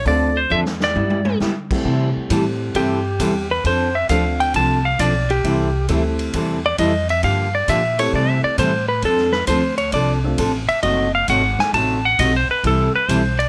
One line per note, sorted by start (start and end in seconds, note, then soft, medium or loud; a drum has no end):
0.05 0.49 D2 medium
0.05 0.28 D3 medium
0.05 0.29 F3 medium
0.05 0.33 A3 medium
0.05 0.29 C4 medium
0.05 0.33 C4 medium
0.05 0.29 D4 medium
0.05 0.34 D4 medium
0.05 0.34 F4 medium
0.05 0.29 A4 medium
0.05 0.34 A4 medium
0.05 0.38 D5 loud
0.05 kick soft
0.05 open hi-hat soft
0.37 0.50 C5 medium
0.50 0.94 E2 medium
0.50 0.63 D3 medium
0.50 0.63 F3 medium
0.50 0.63 C4 medium
0.50 0.63 D4 medium
0.50 0.63 A4 medium
0.50 0.60 E5 loud
0.66 snare medium
0.80 1.38 D5 medium
0.80 snare medium
0.95 1.39 G2 medium
0.95 1.19 G3 medium
0.95 1.19 B3 medium
0.95 1.19 E4 medium
0.95 1.19 G4 medium
0.95 high tom medium
1.10 high tom medium
1.25 high tom medium
1.40 1.84 D3 medium
1.40 1.53 G3 medium
1.40 1.53 B3 medium
1.40 1.53 E4 medium
1.40 1.53 G4 medium
1.40 snare medium
1.71 2.27 G3 medium
1.71 2.27 A3 medium
1.71 2.28 C4 medium
1.71 2.28 E4 medium
1.71 2.28 G4 medium
1.71 kick medium
1.71 crash medium
1.84 2.08 C3 medium
1.84 2.13 C3 medium
1.84 2.08 E3 medium
1.84 2.08 G3 medium
1.84 2.08 C4 medium
1.84 2.08 E4 medium
1.84 2.08 A4 medium
1.84 kick soft
2.17 muted upright bass stroke soft
2.30 2.74 A2 medium
2.30 2.42 C3 medium
2.30 2.43 E3 medium
2.30 3.00 G3 medium
2.30 2.43 G3 medium
2.30 3.00 A3 medium
2.30 2.43 C4 medium
2.30 3.00 C4 medium
2.30 2.43 E4 medium
2.30 3.00 E4 medium
2.30 3.00 G4 medium
2.30 2.43 A4 medium
2.30 kick soft
2.30 hi-hat pedal medium
2.30 ride medium
2.74 3.18 G2 medium
2.74 2.98 C3 medium
2.74 2.98 E3 medium
2.74 2.98 G3 medium
2.74 2.98 C4 medium
2.74 2.98 E4 medium
2.74 3.47 G4 medium
2.74 2.99 A4 medium
2.74 kick soft
2.74 ride medium
3.19 3.63 E2 medium
3.19 3.32 C3 medium
3.19 3.32 E3 medium
3.19 3.32 G3 medium
3.19 3.32 C4 medium
3.19 3.32 E4 medium
3.19 3.32 A4 medium
3.19 kick soft
3.19 hi-hat pedal medium
3.19 ride medium
3.51 3.65 B4 medium
3.64 4.08 F2 medium
3.64 3.88 F3 medium
3.64 3.88 C4 medium
3.64 3.88 D4 medium
3.64 3.88 A4 medium
3.64 3.95 C5 medium
3.64 kick soft
3.64 ride medium
3.95 4.09 E5 medium
4.09 4.53 D2 medium
4.09 4.22 F3 medium
4.09 4.79 A3 medium
4.09 4.79 C4 medium
4.09 4.23 C4 medium
4.09 4.79 D4 medium
4.09 4.23 D4 medium
4.09 4.79 F4 medium
4.09 4.80 A4 medium
4.09 4.23 A4 medium
4.09 4.39 F5 medium
4.09 kick soft
4.09 hi-hat pedal medium
4.09 ride medium
4.40 4.54 G5 medium
4.40 ride soft
4.54 4.98 C2 medium
4.54 4.78 F3 medium
4.54 4.78 C4 medium
4.54 4.78 D4 medium
4.54 4.78 A4 medium
4.54 4.85 A5 loud
4.54 kick soft
4.54 ride medium
4.85 4.99 F5 medium
4.99 5.43 B1 loud
4.99 5.12 F3 medium
4.99 5.12 C4 medium
4.99 5.12 D4 medium
4.99 5.12 A4 medium
4.99 5.29 D5 medium
4.99 kick soft
4.99 hi-hat pedal medium
4.99 ride medium
5.30 5.86 G4 medium
5.30 ride soft
5.44 5.88 C2 medium
5.44 5.67 C3 medium
5.44 5.67 E3 medium
5.44 5.67 G3 medium
5.44 5.68 C4 medium
5.44 5.68 E4 medium
5.44 5.68 A4 medium
5.44 kick soft
5.44 ride medium
5.88 6.33 D2 medium
5.88 6.01 C3 medium
5.88 6.01 E3 medium
5.88 6.01 G3 medium
5.88 6.59 A3 medium
5.88 6.59 C4 medium
5.88 6.02 C4 medium
5.88 6.59 E4 medium
5.88 6.02 E4 medium
5.88 6.59 G4 medium
5.88 6.02 A4 medium
5.88 6.59 A4 medium
5.88 kick soft
5.88 hi-hat pedal soft
5.88 ride medium
6.19 ride medium
6.33 6.78 E2 medium
6.33 6.57 C3 medium
6.33 6.57 E3 medium
6.33 6.57 G3 medium
6.33 6.58 C4 medium
6.33 6.58 E4 medium
6.33 6.58 A4 medium
6.33 kick soft
6.33 ride medium
6.66 6.79 D5 medium
6.78 7.22 F2 medium
6.78 6.91 C3 medium
6.78 6.91 E3 medium
6.78 6.91 G3 medium
6.78 6.91 C4 medium
6.78 6.91 E4 medium
6.78 6.91 A4 medium
6.78 7.09 D#5 medium
6.78 kick soft
6.78 hi-hat pedal medium
6.78 ride medium
7.09 7.24 E5 medium
7.09 ride soft
7.23 7.67 G2 medium
7.23 7.46 D3 medium
7.23 7.46 F3 medium
7.23 7.47 A#3 medium
7.23 7.47 D4 medium
7.23 7.47 G4 medium
7.23 7.54 F5 loud
7.23 kick soft
7.23 ride medium
7.55 7.69 D5 medium
7.68 8.12 A#2 medium
7.68 7.81 D3 medium
7.68 7.81 F3 medium
7.68 7.81 A#3 medium
7.68 7.81 D4 medium
7.68 7.81 G4 medium
7.68 7.99 E5 loud
7.68 kick soft
7.68 hi-hat pedal medium
7.68 ride medium
7.99 8.55 A3 medium
7.99 8.56 C4 medium
7.99 8.56 E4 medium
7.99 8.56 G4 medium
7.99 8.56 A4 medium
7.99 8.13 C#5 medium
7.99 ride medium
8.13 8.42 C3 medium
8.13 8.37 C3 medium
8.13 8.37 E3 medium
8.13 8.37 G3 medium
8.13 8.37 C4 medium
8.13 8.37 E4 medium
8.13 8.37 A4 medium
8.13 8.29 D5 medium
8.13 kick soft
8.29 8.44 E5 medium
8.44 8.58 D5 medium
8.44 muted upright bass stroke soft
8.58 9.02 A2 medium
8.58 8.71 C3 medium
8.58 8.71 E3 medium
8.58 8.71 G3 medium
8.58 8.71 C4 medium
8.58 8.71 E4 medium
8.58 8.71 A4 medium
8.58 8.88 C5 medium
8.58 kick soft
8.58 hi-hat pedal medium
8.58 ride medium
8.88 9.03 B4 medium
9.02 9.47 F2 medium
9.02 9.27 F3 medium
9.02 9.27 C4 medium
9.02 9.27 D4 medium
9.02 9.27 A4 medium
9.02 9.34 A4 medium
9.02 kick soft
9.02 ride medium
9.17 snare soft
9.32 9.47 B4 medium
9.32 snare soft
9.47 9.92 D2 medium
9.47 9.60 F3 medium
9.47 9.60 C4 medium
9.47 9.61 D4 medium
9.47 9.61 A4 medium
9.47 9.77 C5 medium
9.47 kick soft
9.47 hi-hat pedal medium
9.47 ride medium
9.78 9.92 C#5 medium
9.78 ride medium
9.92 10.37 C2 medium
9.92 10.17 F3 medium
9.92 10.17 C4 medium
9.92 10.17 D4 medium
9.92 10.17 A4 medium
9.92 10.12 D5 medium
9.92 kick soft
9.92 ride medium
10.24 10.37 A3 medium
10.24 10.37 C4 medium
10.24 10.37 D4 medium
10.24 10.37 F4 medium
10.24 10.37 A4 medium
10.38 10.67 A1 loud
10.38 10.51 F3 medium
10.38 10.51 C4 medium
10.38 10.51 D4 medium
10.38 10.51 A4 medium
10.38 kick soft
10.38 hi-hat pedal medium
10.38 ride medium
10.69 10.82 E5 medium
10.69 muted upright bass stroke soft
10.69 ride soft
10.82 11.27 F#1 medium
10.82 11.06 C3 medium
10.82 11.06 F#3 medium
10.82 11.06 A3 medium
10.82 11.06 D#4 medium
10.82 11.06 F#4 medium
10.82 11.13 D#5 medium
10.82 kick soft
10.82 ride medium
11.15 11.28 F5 medium
11.28 11.57 G#1 medium
11.28 11.41 C3 medium
11.28 11.41 F#3 medium
11.28 11.41 A3 medium
11.28 11.41 D#4 medium
11.28 11.41 F#4 medium
11.28 11.59 F#5 medium
11.28 kick soft
11.28 hi-hat pedal medium
11.28 ride medium
11.59 11.74 G#5 medium
11.59 snare medium
11.73 12.17 A1 medium
11.73 11.97 C3 medium
11.73 11.97 F#3 medium
11.73 11.97 A3 medium
11.73 11.97 D#4 medium
11.73 11.97 F#4 medium
11.73 12.04 A5 loud
11.73 kick soft
11.73 ride medium
12.05 12.19 F#5 loud
12.19 12.47 B1 loud
12.19 12.31 C3 medium
12.19 12.31 F#3 medium
12.19 12.31 A3 medium
12.19 12.32 D#4 medium
12.19 12.32 F#4 medium
12.19 12.34 D#5 medium
12.19 kick soft
12.19 hi-hat pedal medium
12.19 ride medium
12.36 12.50 C5 medium
12.49 12.64 B4 medium
12.49 muted upright bass stroke soft
12.64 12.92 C2 medium
12.64 12.87 C3 medium
12.64 12.87 E3 medium
12.64 12.87 G3 medium
12.64 12.87 C4 medium
12.64 12.87 E4 medium
12.64 12.87 A4 medium
12.64 12.95 A4 medium
12.64 kick soft
12.64 ride medium
12.96 13.09 B4 medium
13.09 13.49 B1 medium
13.09 13.21 C3 medium
13.09 13.21 E3 medium
13.09 13.21 G3 medium
13.09 13.21 C4 medium
13.09 13.21 E4 medium
13.09 13.21 A4 medium
13.09 13.39 C5 medium
13.09 kick soft
13.09 hi-hat pedal medium
13.09 ride medium
13.39 13.49 D5 medium
13.39 ride medium